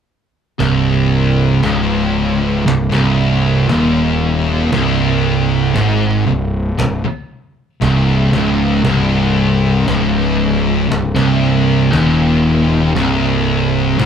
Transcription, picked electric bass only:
0.60 C1
1.64 C#1
2.66 C1
2.92 C1
3.70 D#1
4.73 C1
5.76 G#1
6.27 C1
6.78 C1
7.04 muted picked electric bass stroke
7.81 C1
8.34 C#1
8.84 C1
9.88 C#1
10.91 C1
11.16 C1
11.94 D#1
12.96 C1
14.00 G#1

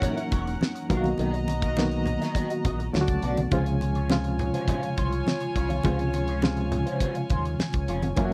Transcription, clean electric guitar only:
0.02 E4 A#4 C#5
0.17 muted clean electric guitar stroke
0.31 E4 A#4 C#5
0.46 muted clean electric guitar stroke
0.61 muted clean electric guitar stroke
0.75 muted clean electric guitar stroke
0.90 F#4 A#4 F5
1.04 muted clean electric guitar stroke
1.19 F#4 A#4 D#5
1.34 muted clean electric guitar stroke
1.48 muted clean electric guitar stroke
1.63 F#4 A#4 F5
1.77 muted clean electric guitar stroke
1.92 muted clean electric guitar stroke
2.21 F#4 A#4 D#5
2.35 F#4 A#4 D#5
2.50 muted clean electric guitar stroke
2.65 F#4 A#4 D#5
2.79 muted clean electric guitar stroke
2.94 muted clean electric guitar stroke
3.09 muted clean electric guitar stroke
3.23 D4 F#4 D5
3.37 muted clean electric guitar stroke
3.52 C#4 F4 C5
3.66 muted clean electric guitar stroke
3.81 muted clean electric guitar stroke
3.96 C#4 F4 C#5
4.10 muted clean electric guitar stroke
4.25 muted clean electric guitar stroke
4.54 C#4 F4 C5
4.69 C#4 F4 C5
4.83 muted clean electric guitar stroke
4.97 C#4 F4 C5
5.12 muted clean electric guitar stroke
5.26 muted clean electric guitar stroke
5.41 muted clean electric guitar stroke
5.56 C#4 F4 C#5
5.70 muted clean electric guitar stroke
5.85 C#4 F4 C5
6.00 muted clean electric guitar stroke
6.14 muted clean electric guitar stroke
6.29 C#4 F4 C#5
6.43 muted clean electric guitar stroke
6.57 muted clean electric guitar stroke
6.86 C#4 F4 C5
7.01 C#4 F4 C5
7.16 muted clean electric guitar stroke
7.30 C#4 F4 C5
7.45 muted clean electric guitar stroke
7.60 muted clean electric guitar stroke
7.74 muted clean electric guitar stroke
7.88 C#4 F4 C#5
8.03 muted clean electric guitar stroke
8.18 C#4 E4 A#4

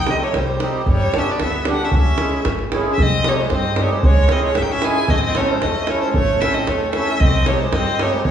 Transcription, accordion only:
0.05 G3 C4 D#4 G4
0.59 G3 C4 D#4 G4
1.13 G3 B3 D4 G4
1.65 G3 B3 D4 G4
2.18 G#3 C#4 E4 G#4
2.70 G#3 C#4 E4 G#4
3.23 G3 C4 D#4 G4
3.75 G3 C4 D#4 G4
4.27 G#3 C#4 E4 G#4
4.81 G#3 C#4 E4 G#4
5.34 A3 C#4 E4 A4
5.87 A3 C#4 E4 A4
6.40 A3 C#4 E4 A4
6.94 A3 C#4 E4 A4
7.46 G3 C4 D#4 G4
7.99 G3 C4 D#4 G4

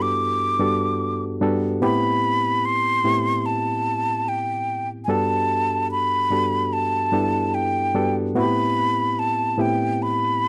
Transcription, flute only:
0.02 D6
1.84 B5
2.65 C6
3.46 A5
4.28 G5
5.04 G#5
5.11 A5
5.91 B5
6.73 A5
7.54 G5
8.37 B5
9.19 A5
9.61 G5
10.02 B5

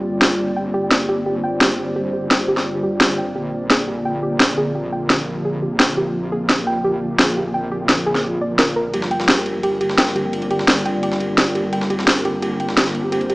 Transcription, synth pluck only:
0.22 G4
0.39 G4
0.56 G5
0.74 G4
1.09 G4
1.26 G4
1.44 G5
1.61 G4
1.96 G4
2.13 G4
2.31 G5
2.48 G4
2.83 G4
3.01 G4
3.18 G5
3.35 G4
3.70 G#4
3.88 G4
4.05 G5
4.23 G4
4.58 G#4
4.75 G4
4.92 G5
5.10 G4
5.45 G#4
5.62 G4
5.80 G5
5.97 G4
6.32 G#4
6.49 G4
6.67 G5
6.84 G4
7.19 G#4
7.37 G4
7.54 G5
7.72 G4
8.06 G#4
8.24 G4
8.41 D5
8.59 A#4
8.76 A#4
8.94 G4
9.11 G5
9.28 G4
9.63 G4
9.81 G4
9.98 G5
10.16 G4
10.51 G4
10.68 G4
10.85 G5
11.03 G4
11.38 G4
11.55 G4
11.73 G5
11.90 G4
12.25 G4
12.43 G4
12.60 G5
12.77 G4
13.12 G4
13.30 G4

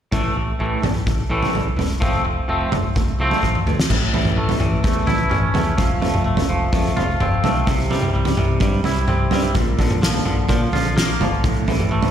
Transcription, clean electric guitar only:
0.12 A2 E3 A3
0.36 A2 E3
0.59 A2 E3 A3
0.83 A2 E3
1.07 A2 E3
1.30 A2 E3 A3
1.53 A2 E3
1.77 A2 E3
2.00 F3 A3 C4
2.25 F3 A3
2.48 F3 A3 C4
2.72 F3 A3
2.96 F3 A3
3.20 F3 A3 C4
3.43 F3 A3
3.67 F3 A3
3.90 A2
4.14 E3
4.38 A3
4.61 E3
4.84 A3
5.07 E4
5.30 C#4
5.54 A3
5.78 F3
6.02 A3
6.26 A3
6.49 F3
6.73 A3
6.97 F4
7.21 C4
7.44 A3
7.67 C3
7.91 G3
8.13 G3
8.38 C3
8.62 G3
8.85 E4
9.08 C4
9.32 G3
9.55 A#2
9.80 D3
10.02 F3
10.26 D3
10.49 F3
10.73 F4
10.96 A#3
11.21 F3
11.44 A2
11.68 E3
11.91 A3

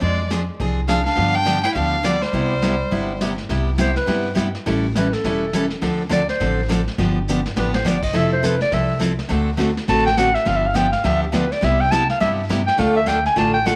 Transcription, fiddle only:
0.01 D5
0.88 F5
1.05 F5
1.35 G5
1.63 G5
1.74 F5
2.05 D5
2.22 C5

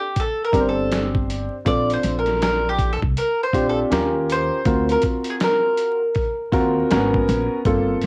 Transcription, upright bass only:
0.53 G1
1.66 A#1
2.04 A#1
3.02 C2
3.53 A#1
3.91 D#2
4.66 D2
6.52 D#2
6.91 G#1
7.29 A#1
7.65 G1

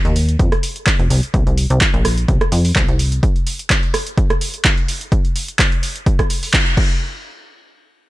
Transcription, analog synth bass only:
0.05 D#2
0.39 F2
0.99 F1
1.10 C2
1.34 C2
1.47 C2
1.70 C2
1.94 A#1
2.28 C2
2.52 F2
2.76 C2
2.88 C2

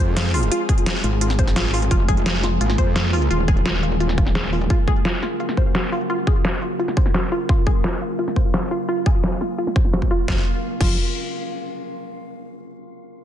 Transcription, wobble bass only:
0.00 F2
1.04 G#1
1.91 F1
2.08 F1
2.61 G#1
2.78 F2
3.31 D#1
10.28 F1
10.81 F1

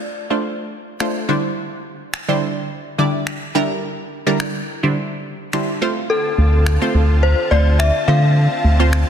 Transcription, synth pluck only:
0.30 A3 D4 F4 C5
1.00 A3 D4 F4 C5
1.29 D3 G3 D4 E4 C5
2.28 D3 G3 D4 E4 C5
2.98 D3 G3 D4 E4 D5
3.55 D3 G3 D4 E4 A#4
4.26 D3 G3 D4 E4 A#4
4.83 D3 G3 D4 E4 C5
5.53 D3 G3 D4 E4 C5
5.82 A3 C4 F4 C5
6.81 A3 C4 F4 C5
7.51 A3 C4 F4 C5
8.08 A3 C4 F4 C5
8.80 A3 C4 F4 C5

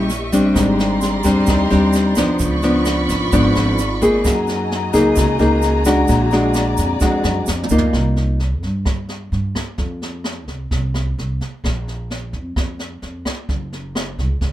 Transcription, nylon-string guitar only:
Already playing: A#2
0.32 G3 C4 D4
0.55 G#2
1.24 G3 C4 D4
1.47 D#3
1.70 G3 C4 D4
2.17 F3 B3 D4
2.39 C#3
2.63 F3 B3 D4
3.32 G#2 F3 B3 D4
4.01 A#3 D#4 G#4
4.24 F#3
4.93 A#3 D#4 G#4
5.15 C#3
5.39 A#3 D#4 G#4
5.85 G#3 D4 F#4
6.09 A#2
6.32 G#3 D4 F#4
7.01 F2 G#3 D4 F#4
7.71 A#3 D#4 F4

